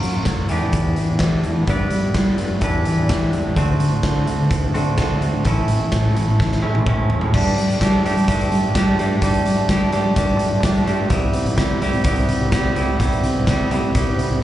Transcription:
Already playing: F#3 A#3 C#4 F4
0.03 F#3, closed hi-hat
0.16 F#2
0.25 F#2, kick, snare, closed hi-hat
0.49 E2 E3 B3 D4 G4, closed hi-hat
0.63 E3
0.73 E2, kick, closed hi-hat
0.96 E3, closed hi-hat
1.09 E2
1.19 E3, kick, snare, closed hi-hat
1.43 E2, closed hi-hat
1.57 E3
1.67 G2 G3 B3 E4 B4 D5, kick, closed hi-hat
1.90 G3, closed hi-hat
2.03 G2
2.14 G3, kick, snare, closed hi-hat
2.38 G2, closed hi-hat
2.50 F#2
2.61 E2 E3 G3 D4 E4 B4, kick, closed hi-hat
2.85 E3, closed hi-hat
2.97 E2
3.09 E3, kick, snare, closed hi-hat
3.33 E2, closed hi-hat
3.46 A1
3.56 D2 D3 A3 C4 F#4, kick, closed hi-hat
3.80 D3, closed hi-hat
3.92 D2
4.03 D3, kick, snare, closed hi-hat
4.27 D2, closed hi-hat
4.39 D3
4.51 D2, kick, closed hi-hat
4.74 D3 A3 C4 F#4, closed hi-hat
4.87 D2
4.98 D3 A3 C4 F#4, kick, snare, closed hi-hat
5.21 D2, closed hi-hat
5.34 D3
5.45 A1 A2 E3 A3 C#4 E4, kick, closed hi-hat
5.68 A2, closed hi-hat
5.79 A1
5.92 A2, kick, snare, closed hi-hat
6.16 A1, closed hi-hat
6.28 A2
6.40 A1, kick, snare
6.52 snare
6.62 A2 E3 A3 C#4 E4
6.75 A1, high tom
6.86 A2 E3 A3 C#4 E4, kick, mid tom
7.10 A1, floor tom
7.21 A2, floor tom
7.34 G2 G3 A3 D4 G4, kick, crash
7.58 G3, closed hi-hat
7.70 G2, closed hi-hat
7.79 G3 A3 D4 G4, kick, snare, closed hi-hat
8.05 G2 G3 A3 D4 G4, closed hi-hat
8.17 G3, closed hi-hat
8.28 G2 G3 A3 D4 G4, kick, closed hi-hat
8.40 closed hi-hat
8.51 G3, closed hi-hat
8.64 G2
8.75 G3 A3 D4 G4, kick, snare, closed hi-hat
8.98 G2 G3 A3 D4 G4, closed hi-hat
9.22 G2 G3 A3 D4 G4, kick, closed hi-hat
9.34 closed hi-hat
9.44 G3, closed hi-hat
9.57 G2
9.69 G3 A3 D4 G4, kick, snare, closed hi-hat
9.92 G2 G3 A3 D4 G4, closed hi-hat
10.05 G3
10.16 G2 G3 A3 D4 G4, kick, closed hi-hat
10.39 G3, closed hi-hat
10.52 G2
10.63 G3 A3 D4 G4, kick, snare, closed hi-hat
10.75 closed hi-hat
10.86 G2 G3 A3 D4 G4, closed hi-hat
11.09 C2 C3 G3 B3 E4 G4, kick, closed hi-hat
11.33 C3, closed hi-hat
11.46 C2, closed hi-hat
11.56 C3 G3 B3 E4 G4, kick, snare, closed hi-hat
11.81 C2 C3 G3 B3 E4 G4, closed hi-hat
11.93 C3, closed hi-hat
12.04 C2 C3 G3 B3 E4 G4, kick, closed hi-hat
12.16 closed hi-hat
12.29 C3, closed hi-hat
12.41 C2
12.51 C3 G3 B3 E4 G4, kick, snare, closed hi-hat
12.75 C2 C3 G3 B3 E4 G4, closed hi-hat
12.99 C2 C3 G3 B3 E4 G4, kick, closed hi-hat
13.12 closed hi-hat
13.23 C3, closed hi-hat
13.35 C2
13.47 C3 G3 B3 E4 G4, kick, snare, closed hi-hat
13.70 C2 C3 G3 B3 E4 G4, closed hi-hat
13.83 C3
13.94 C2 C3 G3 B3 E4 G4, kick, closed hi-hat
14.18 C3, closed hi-hat
14.31 C2

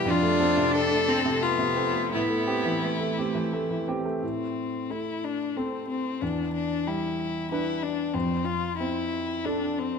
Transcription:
Already playing: B2 G4 B4
0.05 F2 D4
0.10 F4
0.23 A3
0.40 C4 A4
0.57 C3
0.75 A4
0.91 A3
1.08 C4 A4
1.26 C3
1.42 A3 B3 F4
1.59 C3
1.76 C4 A4
1.94 A3
2.12 A2 B3 E4
2.30 A3
2.47 C4 G4
2.65 E3
2.84 A3
3.00 A3
3.18 C4 G4
3.35 E3
3.53 A3
3.71 E3
3.88 C4 G4
4.05 A3
4.22 A2 C4
4.90 A3 E4
5.24 D4
5.57 C4 A4
5.88 C4
6.21 E2 D4
6.53 D4
6.87 G3 E4
7.51 D4 E4 B4
7.83 D4
8.14 F2 C4
8.45 F4
8.78 C4 E4
9.44 D4 A4
9.79 C4

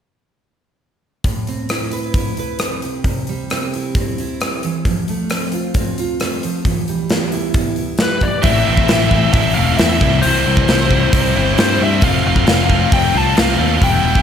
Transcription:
1.24 A2, kick, open hi-hat
1.47 C4, open hi-hat
1.69 E4, cross-stick, open hi-hat
1.92 B4, open hi-hat
2.14 E4, kick, open hi-hat
2.37 B4, open hi-hat
2.59 C4, cross-stick, open hi-hat
2.82 C3, open hi-hat
3.04 C3, kick, open hi-hat
3.27 G3, open hi-hat
3.50 C4, cross-stick, open hi-hat
3.74 E4, open hi-hat
3.95 C4, kick, open hi-hat
4.18 E4, open hi-hat
4.41 G3, cross-stick, open hi-hat
4.63 E3, open hi-hat
4.85 F3, kick, open hi-hat
5.08 A3, open hi-hat
5.30 C4, cross-stick, open hi-hat
5.52 F4, open hi-hat
5.74 C4, kick, open hi-hat
5.98 F4, open hi-hat
6.20 A3, cross-stick, open hi-hat
6.43 F3, open hi-hat
6.65 E3, kick, open hi-hat
6.88 G3, open hi-hat
7.10 B3, snare, open hi-hat
7.32 E4, open hi-hat
7.54 B3, kick, open hi-hat
7.76 E4, open hi-hat
7.98 G3, snare, open hi-hat
8.02 B4
8.21 E3 D5, kick, open hi-hat
8.42 A1 A2 E3 A3 C4 E4 E5, kick, open hi-hat
8.65 A1 A3 C4 E4 E5
8.77 kick
8.88 A1 E3 A3 C4 E4, snare, open hi-hat
9.10 A2 E3 A3 C4 E4, kick
9.33 A1 E3 A3 C4 E4 E5, kick, open hi-hat
9.55 E1 A2 E3 A3 C4 E4 F5
9.77 E2 E3 A3 C4 E5, snare, open hi-hat
9.81 E4
10.01 C2 C3 E3 G3 C4 E4, kick
10.21 C2 C3 E3 G3 C4 C5, open hi-hat
10.26 E4
10.47 C2 G3 C4 E4
10.57 kick
10.68 C2 E3 G3 C4 E4, snare, open hi-hat
10.91 C3 E3 G3 C4 E4, kick
11.12 C2 E3 G3 C4 E4, kick, open hi-hat
11.35 G1 C3 E3 G3 C4 E4
11.58 G2 E3 G3 C4 E4 C5, snare, open hi-hat
11.80 G2 G3 C4 E4 E5
12.01 F1 F3 A3 C4 F4 F5, kick, open hi-hat
12.24 F1 A3 C4 F4 F5
12.36 kick
12.46 F1 F3 A3 C4 F4, snare, open hi-hat
12.68 F3 A3 C4 F4, kick
12.73 A3 C4 F4
12.91 F1 F3 A3 C4 F4 G5, kick, open hi-hat
13.14 C2 F3 A3 C4 F4
13.18 A5
13.35 C2 F3 A3 C4 F4, snare, open hi-hat
13.40 F5
13.58 D#2 A3 C4 F4
13.79 E1 E3 G3 B3 E4, kick, open hi-hat
13.84 G5
14.02 E1 G3 B3 E4
14.15 kick

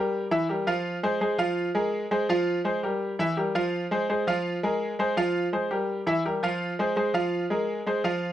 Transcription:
Already playing: G3 G4 A#4
0.31 E3 E4 E5
0.49 G3 G4 A#4
0.67 F3 F4 F5
1.03 G#3 G#4 C5
1.21 G#3 G#4 C5
1.38 F3 F4 F5
1.75 G#3 G#4 A#4
2.11 G#3 G#4 C5
2.29 F3 F4 F5
2.65 G#3 G#4 C5
2.83 G3 G4 A#4
3.19 E3 E4 E5
3.37 G3 G4 A#4
3.55 F3 F4 F5
3.91 G#3 G#4 C5
4.09 G#3 G#4 C5
4.27 F3 F4 F5
4.63 G#3 G#4 A#4
4.99 G#3 G#4 C5
5.17 F3 F4 F5
5.53 G#3 G#4 C5
5.71 G3 G4 A#4
6.07 E3 E4 E5
6.25 G3 G4 A#4
6.43 F3 F4 F5
6.79 G#3 G#4 C5
6.96 G#3 G#4 C5
7.14 F3 F4 F5
7.50 G#3 G#4 A#4
7.86 G#3 G#4 C5
8.04 F3 F4 F5

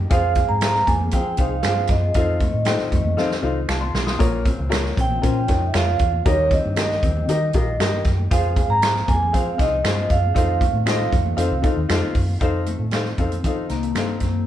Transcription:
0.00 high conga
0.10 F2 F3 G#3 C4 F4 G#4 C5 F5, kick, closed hi-hat, muted conga, low conga
0.35 G#4, kick, closed hi-hat, high conga
0.49 G#2 A#5
0.61 G#4 C5 F5, finger snap, snare, closed hi-hat, high conga
0.75 snare, high conga
0.87 F2 A#3 G#5, kick, closed hi-hat, muted conga, low conga
1.01 high conga, low conga
1.11 F3 C4 G#4 C5 F5 G5, kick, closed hi-hat, muted conga
1.37 C2 D#4 G#4 C5 F5, kick, closed hi-hat
1.63 G2 F4 G#4 C5 F5, finger snap, snare, closed hi-hat, muted conga
1.78 high conga
1.87 F#2 D#5, kick, snare, closed hi-hat, muted conga
2.03 high conga
2.14 F2 D#3 A3 D#4 F4 A4 C5 F5, kick, closed hi-hat, muted conga, low conga
2.40 A3, kick, closed hi-hat, high conga
2.54 A2
2.65 D#4 F4 A4 C5 G5, finger snap, snare, closed hi-hat, muted conga, high conga
2.79 snare, high conga
2.92 F2 A3, kick, closed hi-hat, muted conga, low conga
3.04 F2, high conga, low conga
3.17 F3 C4 D#4 F4 A4 C5 F5, snare, muted conga
3.31 snare
3.42 C2 D#4 F4 A4 C5 F5, muted conga
3.69 C2 F4 F5 A5, finger snap, snare, muted conga
3.81 A5 C6, high conga
3.94 B1, snare
4.06 C6 D#6, snare, high conga
4.19 A#1 A#2 A#3 F4 A#4 C#5, kick, closed hi-hat, low conga
4.45 C4, kick, closed hi-hat, muted conga, high conga
4.59 C#2
4.69 F4 A#4 C#5, finger snap, snare, closed hi-hat, high conga
4.84 snare, high conga
4.96 A#1 C4, kick, closed hi-hat, muted conga, low conga
5.01 G5
5.09 high conga, low conga
5.22 A#2 C#4 F4 A#4 C5, kick, closed hi-hat, muted conga
5.48 F2 D#4 F4 A#4 C#5, kick, snare, closed hi-hat
5.67 E5
5.73 F2 F4 A#4 C#5 F5, finger snap, snare, closed hi-hat, muted conga
5.86 high conga
5.99 E2, kick, closed hi-hat, muted conga
6.13 high conga
6.24 D#2 D#3 G3 D#4 G4 A#4 C#5 D#5, kick, closed hi-hat, low conga
6.51 C4 D#5, kick, closed hi-hat, muted conga, high conga
6.66 G2
6.76 G4 A#4 D#5, finger snap, snare, closed hi-hat, high conga
6.91 snare, high conga
7.03 D#2 C4, kick, closed hi-hat, low conga
7.17 high conga, low conga
7.28 D#3 D#4 G4 A#4 D#5, closed hi-hat
7.53 A#1 F4 G4 A#4 D#5, kick, closed hi-hat, muted conga
7.79 G2 G4 A#4 D#5, finger snap, snare, closed hi-hat, muted conga
7.94 high conga
8.04 F#2, kick, snare, closed hi-hat, muted conga
8.19 high conga
8.31 F2 F3 G#3 C4 F4 G#4 C5 F5, kick, closed hi-hat, low conga
8.56 G#4, kick, closed hi-hat, high conga
8.68 G#2 A#5
8.82 G#4 C5 F5, finger snap, snare, closed hi-hat, muted conga, high conga
8.95 snare, high conga
9.08 F2 A#3 G#5, kick, closed hi-hat, muted conga, low conga
9.23 high conga, low conga
9.32 F3 C4 G#4 C5 F5, kick, closed hi-hat, muted conga
9.58 C2 D#4 G#4 C5 D#5 F5, kick, snare, closed hi-hat
9.83 G2 F4 G#4 C5 F5, finger snap, snare, closed hi-hat
9.99 high conga
10.10 F#2 F5, kick, closed hi-hat, muted conga
10.25 high conga
10.34 F2 D#3 A3 C4 D#4 F4 A4 C5 F5, kick, closed hi-hat, muted conga, low conga
10.61 A3, kick, closed hi-hat, high conga
10.73 A2
10.86 D#4 F4 A4 C5 D#5, finger snap, snare, closed hi-hat, muted conga, high conga
11.01 high conga
11.12 F2 A3, kick, closed hi-hat, muted conga, low conga
11.26 high conga, low conga
11.36 F2 C4 D#4 F4 A4 C5 F5, closed hi-hat, muted conga
11.51 C2
11.62 D#4 F4 A4 C5 F5, kick, closed hi-hat, muted conga
11.76 D#2
11.89 F2 D#4 F4 A4 C5 F5, finger snap, snare, closed hi-hat, muted conga
12.03 high conga
12.15 F#2, kick, open hi-hat, muted conga
12.29 high conga
12.39 F2 D#3 C4 D#4 F4 A4 C5 F5, kick, closed hi-hat, low conga
12.66 A3, closed hi-hat, muted conga, high conga
12.79 A2
12.91 D#4 A4 C5 F5, finger snap, snare, closed hi-hat, muted conga, high conga
13.05 snare
13.18 F2 C4 D#4 A4 C5 F5, kick, closed hi-hat, muted conga, low conga
13.32 closed hi-hat, high conga
13.44 F3 D#4 A4 C5 F5, kick, closed hi-hat
13.69 C2 A#3 D#4, snare, closed hi-hat
13.83 closed hi-hat
13.95 G2 C4 D#4 A4 C5 F5, finger snap, snare, closed hi-hat
14.09 high conga
14.20 F#2, kick, snare, closed hi-hat
14.35 high conga

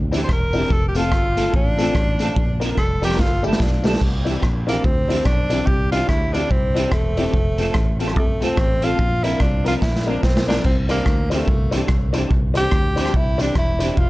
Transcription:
Already playing: D2
0.12 E3 C4 D4 E4 G4, closed hi-hat, tambourine
0.24 C5
0.29 E1 A#4, kick, cross-stick
0.53 E3 C4 D4 E4 G4, open hi-hat, tambourine
0.70 F1 A4, kick, hi-hat pedal
0.88 G4
0.95 A3 C4 F4 A4, closed hi-hat, tambourine
1.12 G1, kick, cross-stick
1.36 A3 C4 F4 A4, closed hi-hat, tambourine
1.54 A1 D4, kick
1.77 A3 C4 F4 A4, closed hi-hat, tambourine
1.95 A1, kick, cross-stick
2.19 A3 C4 F4 A4, closed hi-hat, tambourine
2.36 A#1, kick
2.60 F3 C4 D4 A#4, closed hi-hat, tambourine
2.77 F1 A4, kick, cross-stick
3.01 F3 C4 D4 G4 A#4, closed hi-hat, tambourine
3.11 cross-stick
3.19 G1 F4, kick, snare
3.42 G3 A3 D4 E4 G4 A4, tambourine
3.53 snare
3.60 B1 D4, kick, snare
3.83 G3 A3 D4 G4 A4, snare, tambourine
3.93 snare
4.01 C2, kick, crash
4.25 E3 C4 D4 E4 G4, closed hi-hat
4.43 A#1, kick, cross-stick
4.66 E3 A#3 C4 D4 E4 G4, closed hi-hat
4.84 D2 C4, kick
5.08 E3 C4 D4 E4 G4, closed hi-hat
5.25 B1 D4, kick, cross-stick
5.50 E3 C4 D4 E4 G4, closed hi-hat
5.66 C2 G4, kick
5.91 E3 C4 D4 E4 F4 G4, closed hi-hat
6.09 D2 E4, kick, cross-stick
6.33 E3 C4 D4 E4 G4, closed hi-hat
6.51 C2 C4, kick
6.74 E3 C4 D4 E4 G4, closed hi-hat
6.92 E1 A3, kick, cross-stick
7.17 E3 C4 D4 E4 G4, closed hi-hat
7.33 F1, kick
7.58 A3 C4 F4 A4, closed hi-hat
7.74 A1, kick, cross-stick
7.99 A3 C4 F4 A4, closed hi-hat
8.08 cross-stick
8.16 C2 A3, kick
8.41 A3 C4 F4 A4, closed hi-hat
8.57 A1, kick, cross-stick
8.82 A3 C4 F4 A4, closed hi-hat
8.99 A#1, kick
9.23 F3 C4 D4 E4 A#4, closed hi-hat
9.40 C2 D4, kick, cross-stick
9.64 F3 C4 D4 F4 A#4, closed hi-hat
9.82 A#1 E4, kick, snare
9.96 snare
10.06 F3 C4 D4 A#4
10.23 B1 C4, kick, snare
10.37 snare
10.47 F3 C4 D4 A#4, snare
10.64 C2 C4, kick, crash
10.89 E3 A#3 C4 D4 E4 G4 C5, closed hi-hat, tambourine
11.06 D2, kick, cross-stick
11.30 E3 A3 C4 D4 E4 G4 C5, closed hi-hat, tambourine
11.47 C2, kick
11.71 E3 C4 D4 E4 G4 C5, closed hi-hat, tambourine
11.88 C2, kick, cross-stick
12.13 E3 C4 D4 E4 G4 C5, closed hi-hat, tambourine
12.30 C2, kick
12.54 E3 C4 D4 E4 G4 C5, closed hi-hat, tambourine
12.71 D2, kick, cross-stick
12.96 E3 C4 D4 E4 G4 C5, closed hi-hat, tambourine
13.06 cross-stick
13.14 C2 E4, kick
13.38 E3 C4 D4 E4 G4 C5, closed hi-hat, tambourine
13.55 E1 E4, kick, cross-stick
13.79 E3 C4 D4 E4 G4 C5, closed hi-hat, tambourine
13.97 F1 F4, kick

